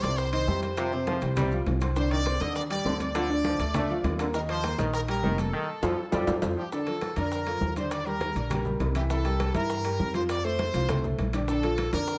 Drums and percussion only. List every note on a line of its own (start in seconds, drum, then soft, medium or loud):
0.03 high bongo soft
0.03 high conga medium
0.03 high timbale medium
0.03 maracas medium
0.18 high bongo medium
0.18 high conga soft
0.18 maracas medium
0.33 high conga soft
0.33 high timbale medium
0.33 maracas soft
0.47 high bongo soft
0.47 low bongo medium
0.47 high conga medium
0.47 maracas soft
0.62 high bongo soft
0.62 high conga medium
0.62 high timbale medium
0.62 maracas medium
0.77 high bongo medium
0.77 high conga soft
0.77 high timbale medium
0.77 maracas medium
0.92 high bongo soft
0.92 high conga soft
0.92 maracas soft
1.07 high bongo medium
1.07 high conga medium
1.07 high timbale medium
1.07 maracas soft
1.22 high bongo soft
1.22 high timbale medium
1.22 maracas medium
1.36 high bongo medium
1.36 high conga soft
1.36 low conga medium
1.36 high timbale loud
1.36 maracas medium
1.51 high conga soft
1.51 maracas soft
1.66 high bongo soft
1.66 low bongo medium
1.66 high conga medium
1.66 high timbale medium
1.66 maracas soft
1.81 high bongo soft
1.81 high conga medium
1.81 high timbale medium
1.81 maracas medium
1.96 high bongo medium
1.96 high conga soft
1.96 maracas loud
2.11 high bongo soft
2.11 high conga soft
2.11 high timbale medium
2.11 maracas soft
2.26 high bongo medium
2.26 high conga medium
2.26 high timbale loud
2.26 maracas soft
2.41 high bongo soft
2.41 high conga medium
2.41 high timbale medium
2.41 maracas medium
2.56 high bongo medium
2.56 high conga soft
2.56 maracas medium
2.71 high conga soft
2.71 high timbale medium
2.71 maracas soft
2.85 high bongo soft
2.85 low bongo medium
2.85 high conga medium
2.85 low timbale medium
2.85 maracas soft
3.00 high bongo soft
3.00 high conga medium
3.00 high timbale medium
3.00 maracas medium
3.15 high bongo medium
3.15 high conga soft
3.15 high timbale loud
3.15 maracas medium
3.30 high bongo soft
3.30 high conga soft
3.30 maracas soft
3.44 high bongo medium
3.44 high conga medium
3.44 high timbale medium
3.44 maracas soft
3.60 high bongo soft
3.60 high conga soft
3.60 high timbale medium
3.60 maracas medium
3.74 high bongo medium
3.74 high conga soft
3.74 low conga loud
3.74 high timbale medium
3.74 maracas medium
3.89 high conga soft
3.89 maracas soft
4.04 high bongo soft
4.04 low bongo medium
4.04 high conga medium
4.04 high timbale medium
4.04 low timbale medium
4.04 maracas soft
4.19 high bongo soft
4.19 high timbale medium
4.19 maracas medium
4.34 high bongo medium
4.34 high conga soft
4.34 maracas loud
4.49 high bongo soft
4.49 high conga soft
4.49 high timbale medium
4.49 maracas soft
4.64 high bongo medium
4.64 high conga medium
4.64 high timbale loud
4.64 maracas soft
4.78 high bongo soft
4.78 high conga loud
4.78 high timbale medium
4.78 maracas medium
4.93 high bongo medium
4.93 high conga soft
4.93 maracas medium
5.08 high conga soft
5.08 high timbale medium
5.08 maracas soft
5.23 high bongo soft
5.23 low bongo medium
5.23 high conga medium
5.23 maracas soft
5.38 high bongo soft
5.38 high conga medium
5.38 high timbale medium
5.38 maracas medium
5.83 low bongo loud
5.83 high conga loud
5.83 high timbale loud
5.83 maracas loud
6.12 low bongo medium
6.12 high conga loud
6.12 high timbale loud
6.12 maracas loud
6.27 low bongo loud
6.27 high conga loud
6.27 high timbale loud
6.27 maracas medium
6.42 low bongo loud
6.42 high conga loud
6.42 high timbale loud
6.42 maracas loud
6.72 high bongo medium
6.72 high conga soft
6.72 maracas medium
6.87 high bongo soft
6.87 high conga soft
6.87 high timbale medium
6.87 maracas soft
7.01 high bongo medium
7.01 high conga medium
7.01 high timbale medium
7.01 maracas soft
7.16 high bongo soft
7.16 high conga medium
7.16 high timbale medium
7.16 maracas medium
7.32 high bongo medium
7.32 high conga soft
7.32 maracas medium
7.46 high conga soft
7.46 high timbale medium
7.46 maracas soft
7.61 high bongo soft
7.61 low bongo medium
7.61 high conga medium
7.61 maracas soft
7.76 high bongo soft
7.76 high conga medium
7.76 high timbale medium
7.76 maracas medium
7.91 high bongo medium
7.91 high timbale medium
7.91 maracas loud
8.06 high bongo soft
8.06 high conga soft
8.06 maracas soft
8.21 high bongo medium
8.21 high conga medium
8.21 high timbale medium
8.21 maracas soft
8.36 high bongo soft
8.36 high timbale medium
8.36 maracas medium
8.50 high bongo medium
8.50 high conga soft
8.50 low conga medium
8.50 high timbale loud
8.50 maracas medium
8.65 high conga soft
8.65 low conga medium
8.65 maracas soft
8.80 high bongo soft
8.80 low bongo medium
8.80 high conga medium
8.80 high timbale medium
8.80 low timbale medium
8.80 maracas soft
8.95 high bongo soft
8.95 high timbale medium
8.95 maracas medium
9.10 high bongo medium
9.10 maracas medium
9.25 high bongo soft
9.25 high conga soft
9.25 high timbale medium
9.25 maracas soft
9.40 high bongo medium
9.40 high conga medium
9.40 high timbale loud
9.40 maracas soft
9.54 high bongo soft
9.54 high conga loud
9.54 high timbale medium
9.54 maracas medium
9.70 high bongo medium
9.70 high conga soft
9.70 maracas medium
9.84 high conga soft
9.84 high timbale medium
9.84 maracas soft
10.00 high bongo soft
10.00 low bongo medium
10.00 high conga loud
10.00 maracas soft
10.14 high bongo soft
10.14 high conga medium
10.14 high timbale medium
10.14 maracas medium
10.29 high bongo medium
10.29 high conga soft
10.29 high timbale medium
10.29 maracas loud
10.44 high bongo soft
10.44 high conga soft
10.44 maracas soft
10.59 high bongo medium
10.59 high conga medium
10.59 high timbale medium
10.59 maracas soft
10.74 high bongo soft
10.74 high conga soft
10.74 high timbale medium
10.74 maracas medium
10.89 high bongo medium
10.89 high conga soft
10.89 low conga loud
10.89 high timbale medium
10.89 maracas medium
11.04 high conga soft
11.04 low conga medium
11.04 maracas soft
11.19 high bongo soft
11.19 low bongo medium
11.19 high conga medium
11.19 high timbale medium
11.19 maracas soft
11.33 high bongo soft
11.33 high conga medium
11.33 high timbale medium
11.33 maracas medium
11.48 high bongo medium
11.48 maracas medium
11.63 high bongo soft
11.63 high conga soft
11.63 high timbale medium
11.63 maracas soft
11.78 high bongo medium
11.78 high conga medium
11.78 high timbale loud
11.78 maracas soft
11.93 high bongo soft
11.93 high conga medium
11.93 high timbale medium
11.93 maracas medium
12.08 high bongo medium
12.08 high conga soft
12.08 maracas medium